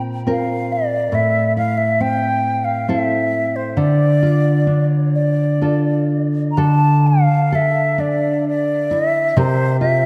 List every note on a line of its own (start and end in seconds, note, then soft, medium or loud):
0.00 1.12 A#2 medium
0.00 0.26 C4 soft
0.00 0.26 F4 soft
0.27 2.00 C4 soft
0.27 1.21 F4 soft
0.27 1.21 A#4 soft
0.27 0.74 F5 medium
0.72 1.16 D5 medium
1.12 3.76 A2 medium
1.12 1.56 E5 medium
1.57 2.88 E4 soft
1.57 1.79 F5 medium
1.77 2.03 E5 medium
2.00 2.87 C4 soft
2.00 2.66 G5 medium
2.64 2.91 F5 medium
2.88 3.85 C4 soft
2.88 3.86 E4 soft
2.88 5.62 A4 soft
2.88 3.57 E5 medium
3.56 3.79 C5 medium
3.77 6.57 D3 medium
3.77 4.85 D5 medium
4.23 5.62 F4 soft
4.67 5.61 D4 soft
5.15 6.07 D5 medium
5.61 7.98 D4 soft
5.61 8.91 F4 soft
5.61 6.58 A4 soft
6.51 6.60 A#5 soft
6.57 9.36 D3 medium
6.57 7.51 A4 soft
6.57 7.08 A5 medium
7.07 7.57 F5 medium
7.52 9.37 A4 soft
7.52 8.02 E5 medium
7.98 9.45 D4 soft
7.98 8.45 D5 medium
8.48 8.94 D5 medium
8.91 9.45 E4 soft
8.91 9.39 E5 medium
9.37 10.06 C3 medium
9.37 10.06 A#4 medium
9.37 9.80 C5 medium
9.80 10.06 F4 soft
9.80 10.06 E5 medium